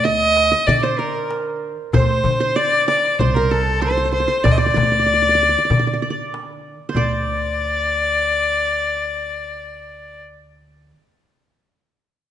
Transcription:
Already playing: upright bass D2, qanun D5
0.04 violin D#5, qanun D#5
0.36 darbuka tek
0.51 qanun D#5
0.67 upright bass D3, violin D5, qanun D5, darbuka dum
0.83 violin C5, qanun C5
0.99 qanun A#4, violin A#4
1.16 darbuka ka
1.31 darbuka tek
1.93 upright bass D2, violin C5, qanun C5, darbuka dum
2.24 upright bass D3, darbuka dum
2.40 qanun C5
2.56 qanun D5, violin D5
2.88 violin D5, qanun D5, darbuka tek
3.19 upright bass C2, violin C5, qanun C5, darbuka dum
3.34 violin A#4, qanun A#4
3.51 violin A4, qanun A4
3.67 darbuka ka
3.80 violin C5, qanun C5, darbuka tek
3.91 qanun C5
3.97 qanun C5
4.05 qanun C5
4.12 qanun C5, violin C5
4.20 qanun C5
4.28 qanun C5
4.44 upright bass D2, violin D5, qanun D5, darbuka dum
4.52 violin D#5
4.58 qanun D5, violin D5
4.66 qanun D5
4.74 upright bass D2, qanun D5, darbuka dum
4.83 qanun D5
4.92 qanun D5, darbuka ka
4.99 qanun D5
5.06 qanun D5, darbuka ka
5.14 qanun D5
5.22 qanun D5
5.29 qanun D5
5.35 qanun D5
5.43 qanun D5
5.49 qanun D5
5.58 qanun D5
5.65 qanun D5
5.70 upright bass D3, qanun D5, darbuka dum
5.79 qanun D5
5.87 qanun D5
5.93 qanun D5
6.02 qanun D5
6.10 qanun D5
6.34 darbuka tek
6.89 qanun C5
6.95 upright bass D2, violin D5, qanun D5, darbuka dum

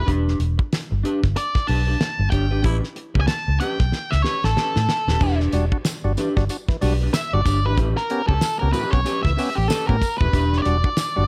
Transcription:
0.06 fingered electric bass E1, clean electric guitar D4 G4 B4, kick, closed hi-hat
0.28 snare
0.40 fingered electric bass E1, closed hi-hat
0.58 muted clean electric guitar stroke, kick
0.73 snare, closed hi-hat
0.91 fingered electric bass G1, muted clean electric guitar stroke
1.03 clean electric guitar D4 G4 B4, closed hi-hat
1.23 fingered electric bass G1, kick, snare
1.35 lead electric guitar D5, muted clean electric guitar stroke, closed hi-hat
1.55 muted clean electric guitar stroke, muted fingered electric bass stroke, kick, snare
1.67 fingered electric bass B1, clean electric guitar D4 G4 B4, lead electric guitar A5, open hi-hat
1.87 clean electric guitar D4 G4 B4
2.00 muted clean electric guitar stroke, snare, closed hi-hat
2.19 fingered electric bass G1, muted clean electric guitar stroke
2.30 fingered electric bass G1, clean electric guitar D4 G4 C#5, lead electric guitar G5, kick, closed hi-hat
2.51 fingered electric bass G#1, clean electric guitar D4 G4 B4
2.62 fingered electric bass A1, clean electric guitar C#4 G4 B4, baritone saxophone E4, kick, closed hi-hat
2.84 snare
2.95 muted clean electric guitar stroke, closed hi-hat
3.14 fingered electric bass C#2, clean electric guitar C#4 G4 B4, kick
3.21 lead electric guitar G#5
3.27 lead electric guitar A5, muted clean electric guitar stroke, snare, closed hi-hat
3.48 fingered electric bass C#2, muted clean electric guitar stroke
3.60 clean electric guitar C#4 G4 B4, lead electric guitar G5, closed hi-hat
3.79 fingered electric bass B1, muted clean electric guitar stroke, kick, snare
3.92 muted clean electric guitar stroke, snare
4.11 fingered electric bass C#2, lead electric guitar E5, snare
4.22 clean electric guitar C#4 G4 B4, lead electric guitar C#5, snare
4.43 fingered electric bass A1, lead electric guitar A4, muted clean electric guitar stroke, snare
4.56 clean electric guitar C#4 G4 B4, snare
4.76 fingered electric bass A2, snare
4.88 muted clean electric guitar stroke, snare
5.08 fingered electric bass D#1, clean electric guitar C#4 G4 B4, snare
5.21 fingered electric bass E1, tonewheel organ E3, clean electric guitar D4 G4 B4, kick, tambourine, crash
5.40 snare
5.52 fingered electric bass E1, tonewheel organ G3 D4 F#4, closed hi-hat, tambourine
5.72 tonewheel organ D4 F#4, muted clean electric guitar stroke, kick
5.85 snare, closed hi-hat, tambourine
6.04 fingered electric bass G1, tonewheel organ G3 D4 F#4, muted clean electric guitar stroke
6.17 tonewheel organ E3, clean electric guitar D4 G4 B4, closed hi-hat, tambourine
6.36 fingered electric bass G1, tonewheel organ G3 D4 F#4, muted clean electric guitar stroke, kick, snare
6.49 tonewheel organ D4 F#4, muted clean electric guitar stroke, closed hi-hat, tambourine
6.69 tonewheel organ E3, muted fingered electric bass stroke, muted clean electric guitar stroke, kick, snare
6.81 fingered electric bass B1, tonewheel organ G3 D4 F#4, clean electric guitar D4 G4 B4, open hi-hat, tambourine
7.01 clean electric guitar D4 G4 B4
7.14 lead electric guitar E5, snare, closed hi-hat, tambourine
7.33 fingered electric bass G1, tonewheel organ G3 D4 F#4, lead electric guitar D5, muted clean electric guitar stroke
7.45 fingered electric bass G1, clean electric guitar D4 G4 C#5, kick, closed hi-hat, tambourine
7.65 fingered electric bass G#1, tonewheel organ E3, clean electric guitar D4 G4 B4, lead electric guitar B4
7.77 fingered electric bass A1, tonewheel organ A2 E3, clean electric guitar C#4 G4 B4, kick, closed hi-hat, tambourine
7.97 lead electric guitar A#4, snare
8.10 tonewheel organ B3 C#4 G4, muted clean electric guitar stroke, closed hi-hat
8.28 fingered electric bass C#2, tonewheel organ C#4 G4, clean electric guitar C#4 G4 B4, lead electric guitar A4, kick
8.41 muted clean electric guitar stroke, snare, closed hi-hat, tambourine
8.59 fingered electric bass C#2, tonewheel organ B3 C#4 G4, lead electric guitar A#4, muted clean electric guitar stroke
8.72 tonewheel organ A2 E3, clean electric guitar C#4 G4 B4, lead electric guitar B4, closed hi-hat, tambourine
8.91 fingered electric bass B1, tonewheel organ B3 C#4 G4, lead electric guitar C#5, muted clean electric guitar stroke, kick, snare
9.05 clean electric guitar C#4 G4 B4, tonewheel organ C#4 G4, closed hi-hat, tambourine
9.23 fingered electric bass C#2, tonewheel organ A2 E3, lead electric guitar E5, kick, snare
9.36 tonewheel organ B3 C#4 G4, clean electric guitar C#4 G4 B4, open hi-hat, tambourine
9.55 fingered electric bass A1, lead electric guitar G4, muted clean electric guitar stroke
9.68 clean electric guitar C#4 G4 B4, lead electric guitar A4, snare, closed hi-hat, tambourine
9.87 fingered electric bass A2, tonewheel organ B3 C#4 G4, lead electric guitar A#4, kick
10.01 muted clean electric guitar stroke, kick, closed hi-hat, tambourine
10.18 fingered electric bass D#1, tonewheel organ A2 E3, clean electric guitar C#4 G4 B4, lead electric guitar B4, kick
10.33 fingered electric bass E1, tonewheel organ E3, clean electric guitar D4 G4 B4, kick, closed hi-hat, tambourine
10.53 snare
10.58 lead electric guitar C#5
10.62 fingered electric bass E1, tonewheel organ G3 D4, lead electric guitar D5, closed hi-hat
10.66 tonewheel organ F#4
10.84 tonewheel organ D4 F#4, muted clean electric guitar stroke, kick
10.97 snare, closed hi-hat, tambourine
11.16 fingered electric bass G1, tonewheel organ G3 D4 F#4, muted clean electric guitar stroke

